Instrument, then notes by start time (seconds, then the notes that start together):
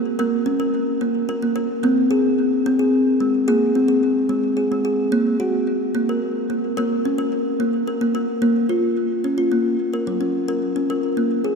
kalimba
Already playing: A#3
0.19 A#3 A#4
0.46 C#4
0.60 A#4
1.01 A#3
1.29 A#4
1.42 A#3
1.56 A#4
1.83 A#3 C4
2.11 G#4
2.66 C4
2.79 G#4
3.20 G#3
3.48 A#3 G#4
3.75 C4
3.88 G#4
4.29 G#3
4.57 G#4
4.72 G#3
4.85 G#4
5.12 A#3
5.40 F#4
5.95 A#3
6.09 A#4
6.50 A#3
6.77 A#3 A#4
7.05 C#4
7.18 A#4
7.60 A#3
7.87 A#4
8.01 A#3
8.15 A#4
8.42 A#3
8.69 F4
9.24 C#4
9.38 F4
9.52 A#3
9.94 A#4
10.07 F#3
10.21 C#4
10.48 A#4
10.76 C#4
10.90 A#4
11.17 A#3
11.44 G#4